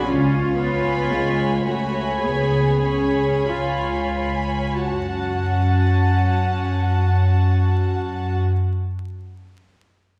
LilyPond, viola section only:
\new Staff \with { instrumentName = "Viola section" } { \time 4/4 \key fis \minor \tempo 4 = 45 cis'8 b8 gis8 a8 b8 cis'8 eis'8 r8 | cis'1 | }